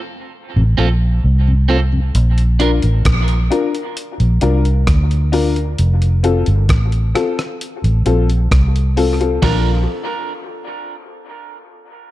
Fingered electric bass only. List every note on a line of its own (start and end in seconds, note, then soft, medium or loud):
0.56 0.77 A1 medium
0.78 1.21 A#1 medium
1.24 2.11 C2 medium
2.15 2.80 A#1 loud
2.84 3.04 A1 medium
3.06 3.48 A#1 medium
4.20 4.41 A#1 medium
4.43 4.85 C2 medium
4.87 5.74 D2 medium
5.79 6.44 F1 loud
6.48 6.68 G1 medium
6.69 7.12 A1 medium
7.84 8.05 A1 medium
8.06 8.49 A#1 medium
8.52 9.39 C2 medium
9.43 9.85 A#1 loud